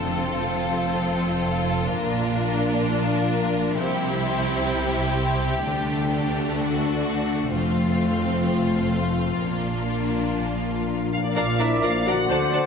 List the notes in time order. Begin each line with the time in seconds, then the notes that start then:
Already playing: A3 A4
0.03 F1 F2 F3 C4 F4
0.19 C4
0.34 A4
0.50 F5
0.65 C5
0.80 A4
0.97 F3
1.13 C4
1.28 A4
1.44 F5
1.59 C5
1.75 A4
1.91 A#1 A#2 D4 A#4
2.06 F3
2.22 F4
2.38 D5
2.53 A#4
2.68 F4
2.84 A#2
2.99 F3
3.16 F4
3.31 D5
3.46 A#4
3.62 F4
3.77 C2 C3 C4 E4 G4
3.93 G3
4.09 E4
4.25 C5
4.41 G4
4.56 E4
4.71 C3
4.86 G3
5.03 E4
5.19 C5
5.35 G4
5.50 E4
5.66 D2 D3 A3 D4
5.82 A3
5.97 F#5
6.13 D5
6.29 A4
6.44 F#4
6.60 D3 F#4
6.76 A3
6.92 F#4
7.07 D5
7.23 A4
7.38 F#4
7.54 F1 F2 F3 C4 F4
7.70 A3
7.86 F4
8.01 C5
8.17 A4
8.33 F4
8.49 F3
8.64 A3
8.80 F4
8.96 C5
9.12 A4
9.29 F4
9.44 A#1 A#2 A#3 D4
9.60 F3
9.76 D4
9.92 A#4
10.08 F4
10.24 D4
10.40 A#2
10.55 F3
10.71 D4
10.87 A#4
11.03 F4
11.11 F4 F5
11.17 A#2 D4
11.22 A#3 D4 D5
11.26 D4
11.31 A#4
11.35 A#1 A#2 F3 A#3 D4 F4 A#4 D5 F5 A#5
11.59 D4 E4 A#4 D5 E5 A#5
11.82 A#1 A#2 D4 F4 A#4 D5 F5 A#5
12.06 D4 F#4 A#4 D5 F#5 A#5
12.12 D3
12.16 C4
12.21 D4
12.25 D3 A4
12.29 D2 D3 A3 D4 C5 D5 A5
12.52 D4 C5 D5 A5